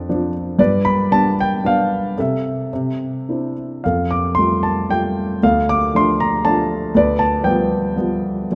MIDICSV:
0, 0, Header, 1, 2, 480
1, 0, Start_track
1, 0, Tempo, 515907
1, 553, Time_signature, 3, 2, 24, 8
1, 1519, Tempo, 548948
1, 3439, Tempo, 529101
1, 4879, Tempo, 505902
1, 6799, Tempo, 534283
1, 7797, End_track
2, 0, Start_track
2, 0, Title_t, "Grand piano"
2, 0, Program_c, 0, 0
2, 0, Control_c, 0, 64, 127
2, 0, Note_on_c, 0, 41, 57
2, 0, Note_on_c, 0, 53, 44
2, 0, Note_on_c, 0, 60, 45
2, 0, Note_on_c, 0, 62, 52
2, 0, Note_on_c, 0, 69, 51
2, 0, Note_on_c, 0, 74, 71
2, 84, Note_off_c, 0, 60, 0
2, 84, Note_on_c, 0, 60, 45
2, 85, Note_off_c, 0, 53, 0
2, 85, Note_on_c, 0, 53, 48
2, 88, Note_off_c, 0, 62, 0
2, 88, Note_on_c, 0, 62, 56
2, 275, Note_off_c, 0, 74, 0
2, 285, Note_off_c, 0, 69, 0
2, 518, Note_off_c, 0, 41, 0
2, 541, Note_off_c, 0, 60, 0
2, 542, Note_off_c, 0, 53, 0
2, 544, Note_off_c, 0, 62, 0
2, 545, Note_on_c, 0, 43, 69
2, 550, Note_on_c, 0, 74, 93
2, 561, Note_on_c, 0, 71, 67
2, 563, Control_c, 0, 64, 0
2, 724, Control_c, 0, 64, 127
2, 789, Note_on_c, 0, 83, 103
2, 795, Note_off_c, 0, 74, 0
2, 1034, Note_on_c, 0, 59, 47
2, 1036, Note_off_c, 0, 83, 0
2, 1037, Note_on_c, 0, 55, 49
2, 1042, Note_on_c, 0, 62, 57
2, 1043, Note_on_c, 0, 81, 100
2, 1240, Note_off_c, 0, 71, 0
2, 1286, Note_off_c, 0, 81, 0
2, 1307, Note_on_c, 0, 79, 89
2, 1507, Note_off_c, 0, 59, 0
2, 1508, Note_off_c, 0, 55, 0
2, 1511, Note_off_c, 0, 62, 0
2, 1522, Note_on_c, 0, 55, 44
2, 1530, Note_on_c, 0, 62, 55
2, 1531, Note_on_c, 0, 59, 41
2, 1542, Note_off_c, 0, 79, 0
2, 1546, Note_on_c, 0, 77, 88
2, 1946, Note_off_c, 0, 43, 0
2, 1972, Note_off_c, 0, 55, 0
2, 1977, Note_off_c, 0, 59, 0
2, 1977, Note_off_c, 0, 62, 0
2, 1996, Note_on_c, 0, 48, 56
2, 1997, Control_c, 0, 64, 0
2, 1998, Note_on_c, 0, 69, 49
2, 2012, Note_off_c, 0, 77, 0
2, 2017, Note_on_c, 0, 76, 68
2, 2139, Control_c, 0, 64, 127
2, 2452, Note_off_c, 0, 48, 0
2, 2469, Control_c, 0, 64, 0
2, 2481, Note_on_c, 0, 48, 57
2, 2613, Control_c, 0, 64, 127
2, 2966, Note_on_c, 0, 62, 34
2, 2970, Note_on_c, 0, 60, 34
2, 2973, Note_on_c, 0, 64, 39
2, 3171, Note_off_c, 0, 69, 0
2, 3180, Note_off_c, 0, 76, 0
2, 3420, Note_off_c, 0, 48, 0
2, 3431, Note_off_c, 0, 62, 0
2, 3433, Note_off_c, 0, 60, 0
2, 3435, Note_off_c, 0, 64, 0
2, 3448, Note_on_c, 0, 77, 65
2, 3449, Control_c, 0, 64, 0
2, 3464, Note_on_c, 0, 41, 49
2, 3464, Note_on_c, 0, 69, 45
2, 3616, Control_c, 0, 64, 127
2, 3690, Note_on_c, 0, 86, 77
2, 3694, Note_off_c, 0, 77, 0
2, 3910, Note_on_c, 0, 84, 84
2, 3933, Note_off_c, 0, 86, 0
2, 3935, Note_on_c, 0, 55, 39
2, 3938, Note_on_c, 0, 57, 41
2, 3950, Note_on_c, 0, 65, 44
2, 4136, Note_off_c, 0, 69, 0
2, 4162, Note_off_c, 0, 84, 0
2, 4166, Note_on_c, 0, 81, 78
2, 4392, Note_off_c, 0, 55, 0
2, 4394, Note_off_c, 0, 57, 0
2, 4399, Note_off_c, 0, 65, 0
2, 4405, Note_on_c, 0, 55, 42
2, 4409, Note_off_c, 0, 81, 0
2, 4414, Note_on_c, 0, 57, 39
2, 4415, Note_on_c, 0, 79, 85
2, 4418, Note_on_c, 0, 65, 47
2, 4854, Note_off_c, 0, 41, 0
2, 4867, Note_off_c, 0, 55, 0
2, 4872, Note_off_c, 0, 57, 0
2, 4873, Note_off_c, 0, 65, 0
2, 4891, Control_c, 0, 64, 0
2, 4891, Note_on_c, 0, 38, 60
2, 4896, Note_on_c, 0, 69, 57
2, 4897, Note_on_c, 0, 77, 83
2, 4901, Note_off_c, 0, 79, 0
2, 5030, Control_c, 0, 64, 127
2, 5142, Note_off_c, 0, 77, 0
2, 5142, Note_on_c, 0, 86, 94
2, 5380, Note_on_c, 0, 53, 49
2, 5383, Note_off_c, 0, 86, 0
2, 5383, Note_on_c, 0, 57, 45
2, 5388, Note_on_c, 0, 62, 53
2, 5398, Note_on_c, 0, 84, 92
2, 5578, Note_off_c, 0, 69, 0
2, 5626, Note_on_c, 0, 82, 91
2, 5628, Note_off_c, 0, 84, 0
2, 5836, Note_off_c, 0, 53, 0
2, 5837, Note_off_c, 0, 57, 0
2, 5840, Note_off_c, 0, 62, 0
2, 5855, Note_on_c, 0, 53, 53
2, 5857, Note_on_c, 0, 81, 94
2, 5860, Note_off_c, 0, 82, 0
2, 5861, Note_on_c, 0, 57, 46
2, 5865, Note_on_c, 0, 62, 55
2, 6287, Note_off_c, 0, 38, 0
2, 6310, Note_off_c, 0, 53, 0
2, 6313, Note_off_c, 0, 57, 0
2, 6315, Note_off_c, 0, 62, 0
2, 6330, Note_on_c, 0, 38, 67
2, 6332, Control_c, 0, 64, 0
2, 6339, Note_off_c, 0, 81, 0
2, 6350, Note_on_c, 0, 71, 64
2, 6351, Note_on_c, 0, 74, 91
2, 6513, Control_c, 0, 64, 127
2, 6561, Note_on_c, 0, 81, 93
2, 6580, Note_off_c, 0, 74, 0
2, 6780, Note_off_c, 0, 71, 0
2, 6795, Note_on_c, 0, 71, 56
2, 6800, Note_on_c, 0, 79, 83
2, 6804, Note_on_c, 0, 53, 55
2, 6807, Note_off_c, 0, 81, 0
2, 6810, Note_on_c, 0, 55, 47
2, 6811, Note_on_c, 0, 59, 59
2, 7255, Note_off_c, 0, 53, 0
2, 7262, Note_off_c, 0, 55, 0
2, 7265, Note_off_c, 0, 59, 0
2, 7268, Note_on_c, 0, 53, 44
2, 7276, Note_on_c, 0, 55, 41
2, 7280, Note_on_c, 0, 59, 52
2, 7728, Note_off_c, 0, 38, 0
2, 7742, Note_off_c, 0, 53, 0
2, 7746, Note_off_c, 0, 55, 0
2, 7748, Note_off_c, 0, 59, 0
2, 7767, Note_on_c, 0, 36, 57
2, 7772, Control_c, 0, 64, 0
2, 7797, Note_off_c, 0, 36, 0
2, 7797, Note_off_c, 0, 71, 0
2, 7797, Note_off_c, 0, 79, 0
2, 7797, End_track
0, 0, End_of_file